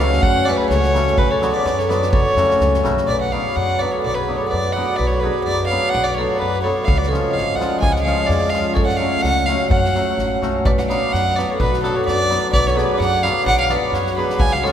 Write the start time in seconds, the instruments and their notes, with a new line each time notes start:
Already playing: upright bass C#2
0.00 hammered dulcimer C#3 F#3 A3 C#4 F#4, vibraphone C#5, fiddle F5
0.12 snare
0.22 upright bass F#2, vibraphone C#5, fiddle F#5, kick
0.45 hammered dulcimer C#3 F#3 A3 C#4 F#4, vibraphone B4, fiddle D5, snare
0.57 fiddle B4
0.61 vibraphone G#4
0.70 upright bass C#2, vibraphone A4, fiddle C#5, snare
0.83 snare
0.94 hammered dulcimer C#3 F#3 A3 C#4 F#4, snare
1.07 snare
1.18 upright bass B1, vibraphone F#4, fiddle B4, kick
1.31 vibraphone A4, fiddle C#5
1.41 hammered dulcimer D3 F#3 B3 D4 F#4, snare
1.54 vibraphone B4, fiddle D5
1.65 upright bass F#2, snare
1.78 vibraphone A4, fiddle C#5, snare
1.89 hammered dulcimer D3 F#3 B3 D4 F#4, vibraphone B4, fiddle D5, snare
2.02 snare
2.12 upright bass F#1, vibraphone A4, fiddle C#5, kick
2.36 upright bass F2, hammered dulcimer C#3 F#3 A3 C#4 F#4, snare
2.50 snare
2.60 upright bass C#2, snare
2.74 snare
2.83 upright bass B1, hammered dulcimer C#3 F#3 A3 C#4 F#4, snare
2.97 snare
3.08 upright bass B1, vibraphone B4, fiddle D5
3.21 vibraphone D5, fiddle F#5
3.32 hammered dulcimer F#3 B3 D4 F#4, vibraphone C#5, fiddle F5
3.56 upright bass F#2, vibraphone D5, fiddle F#5
3.79 hammered dulcimer F#3 B3 D4 F#4, vibraphone B4, fiddle D5
3.92 vibraphone A4, fiddle C#5
4.03 upright bass B1, vibraphone B4, fiddle D5
4.15 vibraphone G#4, fiddle B4
4.28 hammered dulcimer F#3 B3 D4 F#4
4.37 fiddle C#5
4.42 vibraphone A4
4.48 vibraphone B4, fiddle D5
4.53 upright bass F#2
4.73 hammered dulcimer F#3, vibraphone D5, fiddle F#5
4.77 hammered dulcimer B3 D4 F#4
4.96 upright bass B1, vibraphone B4, fiddle D5
5.07 fiddle C#5
5.12 vibraphone A4
5.20 hammered dulcimer F#3, vibraphone G#4, fiddle B4
5.24 hammered dulcimer B3 D4 F#4
5.44 upright bass F#2, vibraphone B4, fiddle D5
5.67 vibraphone C#5, fiddle F5
5.71 hammered dulcimer F#3 B3 D4 F#4
5.90 fiddle F#5
5.94 upright bass B1, vibraphone D5
6.04 vibraphone B4, fiddle D5
6.15 vibraphone A4, fiddle C#5
6.19 hammered dulcimer F#3 B3 D4 F#4
6.38 upright bass F#2, vibraphone F#4, fiddle B4
6.62 hammered dulcimer F#3 B3 D4 F#4, vibraphone A4, fiddle C#5
6.85 upright bass C#2, vibraphone C#5, fiddle F5, kick
6.97 vibraphone B4, fiddle D5
7.03 snare
7.08 hammered dulcimer F3, vibraphone A4, fiddle C#5
7.12 hammered dulcimer G#3 C#4 F4, snare
7.31 vibraphone C#5, fiddle F5
7.35 upright bass G#1, snare
7.56 hammered dulcimer F3, vibraphone D5, fiddle F#5
7.60 hammered dulcimer G#3 C#4 F4, snare
7.80 upright bass C#2, vibraphone F5, fiddle G#5, kick
7.92 vibraphone D5, fiddle F#5, snare
8.02 hammered dulcimer F3 G#3, vibraphone C#5, fiddle F5
8.06 hammered dulcimer C#4 F4, snare
8.27 upright bass F2, vibraphone G#4, fiddle D5, snare
8.50 hammered dulcimer F3 G#3, fiddle F5, snare
8.54 hammered dulcimer C#4 F4, vibraphone C#5
8.74 upright bass F#2, vibraphone A4, fiddle C#5, kick
8.86 vibraphone D5, fiddle F#5, snare
8.97 hammered dulcimer F#3 A3, vibraphone C#5, fiddle F5
9.01 hammered dulcimer C#4 F#4
9.22 upright bass C#2, vibraphone C#5, fiddle F#5, snare
9.46 hammered dulcimer F#3 A3 C#4 F#4, vibraphone C#5, fiddle F5, snare
9.70 upright bass F#2, vibraphone C#5, fiddle F#5, kick
9.85 snare
9.95 hammered dulcimer F#3 A3 C#4 F#4, snare
10.17 upright bass A1, snare
10.42 upright bass B1, hammered dulcimer F#3 A3 C#4 F#4, snare
10.65 upright bass B1, vibraphone B4, fiddle D5, kick
10.78 vibraphone D5, fiddle F#5, snare
10.89 hammered dulcimer F#3 B3 D4 F#4, vibraphone C#5, fiddle F5, snare
11.12 upright bass F#2, vibraphone D5, fiddle F#5, snare
11.36 hammered dulcimer F#3 B3 D4 F#4, vibraphone B4, fiddle D5, snare
11.50 vibraphone A4, fiddle C#5
11.60 upright bass B1, vibraphone F#4, fiddle B4, kick
11.73 snare
11.83 hammered dulcimer F#3 B3 D4 F#4, vibraphone F#4, fiddle A4, snare
11.96 vibraphone A4, fiddle C#5
12.06 upright bass F#2, vibraphone B4, fiddle D5, snare
12.30 hammered dulcimer F#3 B3 D4 F#4, snare
12.53 upright bass B1, vibraphone B4, fiddle D5, kick
12.67 vibraphone A4, fiddle C#5, snare
12.75 hammered dulcimer F#3 B3 D4 F#4, vibraphone G#4, fiddle B4, snare
12.99 upright bass F#2, vibraphone D5, fiddle F#5, snare
13.23 hammered dulcimer F#3 B3 D4 F#4, vibraphone C#5, fiddle F5, snare
13.46 upright bass B1, vibraphone D5, fiddle F#5, kick
13.60 vibraphone C#5, fiddle F5
13.69 hammered dulcimer F#3 B3 D4 F#4, vibraphone B4, fiddle D5, snare
13.92 upright bass F#2, vibraphone F#4, fiddle C#5, snare
14.06 snare
14.17 hammered dulcimer F#3 B3 D4 F#4, vibraphone G#4, fiddle B4
14.30 snare
14.38 upright bass C#2, vibraphone F5, fiddle G#5, kick
14.52 vibraphone C#5, fiddle F5, snare
14.63 hammered dulcimer F3 G#3 C#4 F4, vibraphone A4, fiddle C#5, snare